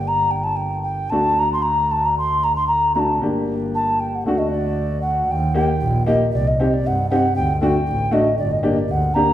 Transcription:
Already playing: G1 A#3 D4 G4
0.08 A#5
0.31 G5
0.43 A5
0.57 G5
0.83 G5
1.10 D2 A3 D4 F#4 A5
1.39 A#5
1.53 C6
1.62 A#5
1.91 A5
2.05 A#5
2.18 C6
2.44 A#5
2.56 C6
2.67 A#5
2.95 A3 D4 F#4 A#5
2.99 A5
3.21 G1 A#3 D4 G4
3.75 A5
4.00 G5
4.15 F#5
4.25 D2 A3 D4 F#4 F#5
4.38 D#5
4.51 D5
5.02 F#5
5.29 D#2 G5
5.54 A#3 D#4 G4 G5
5.81 A#1
6.06 A#3 D#4 G4 D#5
6.33 C2 D5
6.47 D#5
6.60 C4 D#4 G4
6.73 D5
6.85 G2 F#5
7.10 C4 D#4 G4 F#5
7.36 D2 G5
7.61 A3 D4 F#4 G5
7.88 A1
8.11 A3 D4 F#4 D#5
8.39 G1 D5
8.51 D#5
8.63 A#3 D4 G4
8.78 D5
8.90 D2 F#5
9.14 A#3 D4 G4 A#5

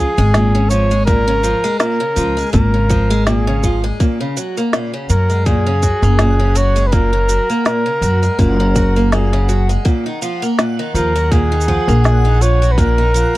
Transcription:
Already playing: F3 G#4
0.18 G#1 G#3, cabasa
0.34 A#2, snare, cabasa
0.55 C#3
0.69 F3 C#5, cabasa
0.91 G#3, cabasa
1.05 A#2 A#4, kick, cabasa
1.28 C#3
1.43 F3, cabasa
1.64 G#3, cabasa
1.79 A#2 A#4, snare, cabasa
2.00 C#3
2.16 C#2 F3, cabasa
2.37 G#3, cabasa
2.40 cabasa
2.42 cabasa
2.49 cabasa
2.51 G#1 A#2 A#4, kick, cabasa
2.54 cabasa
2.74 C#3
2.89 F3, kick, cabasa
3.10 G#3, cabasa
3.26 A#2 G#4, snare, cabasa
3.47 C#3, snare
3.63 F3, kick, cabasa
3.84 G#3
4.00 A#2 F#5, kick, cabasa
4.20 C#3
4.37 F#3, cabasa
4.57 A#3, cabasa
4.73 A#2, snare, cabasa
4.94 C#3
5.09 F#2 F#3 A#4, cabasa
5.30 G#3, cabasa
5.46 A#2 G#4, kick, cabasa
5.66 C#3
5.82 F#3, kick, cabasa
6.02 F#1 A#3, cabasa
6.19 A#2, snare, cabasa
6.40 C#3
6.55 F#3 C#5, cabasa
6.76 G#3, cabasa
6.87 B4
6.92 A#2 A#4, kick, cabasa
7.13 C#3
7.29 F#3, cabasa
7.50 A#3, cabasa
7.65 A#2 A#4, snare, cabasa
7.86 C#3
8.01 F#2 F#3, cabasa
8.23 G#3, cabasa
8.39 F#1 A#2 A#4, kick, cabasa
8.60 C#3
8.75 F#3, kick, cabasa
8.96 A#3, cabasa
9.12 A#2 G#4, snare, cabasa
9.33 C#3, snare
9.49 F#3, cabasa
9.69 G#3, cabasa
9.85 A#2, kick, cabasa
10.06 D#3
10.22 F3, cabasa
10.42 A#3, cabasa
10.59 A#2, snare, cabasa
10.79 D#3
10.94 D#2 F3 A#4, cabasa
11.16 F#3, cabasa
11.32 A#2 G#4, kick, cabasa
11.52 D#3
11.61 cabasa
11.68 F3, kick
11.88 A#1 A#3, cabasa
12.04 A#2, snare, cabasa
12.25 D#3
12.41 F3 C#5, cabasa
12.62 F#3, cabasa
12.72 B4
12.78 A#2 A#4, kick, cabasa
12.98 D#3
13.14 F3, cabasa

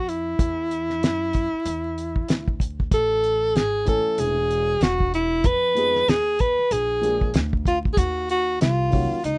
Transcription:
Already playing: F2 F#4
0.09 E4, closed hi-hat
0.39 E2, kick, closed hi-hat
0.71 closed hi-hat
0.90 snare
1.02 F#2, snare, closed hi-hat
1.33 kick, closed hi-hat
1.53 muted upright bass stroke
1.65 E2, closed hi-hat
1.98 closed hi-hat
2.16 kick
2.28 D2, snare, closed hi-hat
2.48 kick
2.60 kick, closed hi-hat
2.80 kick
2.92 A1 A4, kick, closed hi-hat
3.24 closed hi-hat
3.55 G#1 G#4, snare, closed hi-hat
3.85 E3 A3 C#4 A4 G#5, kick, closed hi-hat
4.06 muted upright bass stroke
4.18 E1 G#4, closed hi-hat
4.51 closed hi-hat
4.81 E1 F#4, snare, closed hi-hat
5.00 kick
5.14 E4, closed hi-hat
5.44 F2 B4, kick, closed hi-hat
5.75 F3 G#3 B3 D#4 G#4, closed hi-hat
5.95 snare
6.08 D#2 G#4, snare, closed hi-hat
6.39 B4, kick, closed hi-hat
6.58 muted upright bass stroke
6.71 A#1 G#4, closed hi-hat
7.01 F3 G#3 A#3 D4 G#4, closed hi-hat
7.21 kick
7.34 D2, snare, closed hi-hat
7.53 kick
7.65 F4, kick, closed hi-hat
7.85 kick
7.93 G#4, kick
7.97 D#2 F#4, closed hi-hat
8.29 F#4, closed hi-hat
8.61 C2 F4, snare, closed hi-hat
8.90 D#3 F#3 A#3 C#4 F#4, kick, open hi-hat
9.23 C#2 D#4, closed hi-hat

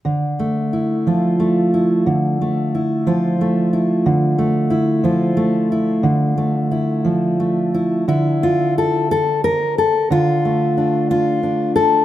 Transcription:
0.05 D3
0.39 A3
0.73 E4
1.07 F3 F4
1.40 A3
1.74 E4
2.06 D3
2.41 A3
2.75 E4
3.07 F3 F4
3.41 A3
3.73 E4
4.06 D3
4.38 A3
4.70 E4
5.04 F3 F4
5.37 A3
5.72 E4
6.03 D3
6.37 A3
6.71 E4
7.05 F3
7.40 A3
7.74 E4
8.08 D3 E4
8.43 F4
8.78 A4
9.11 A4
9.44 A#4
9.78 A4
10.10 D3 F4
10.45 A3
10.77 D4
11.11 F4
11.43 D4
11.76 A4

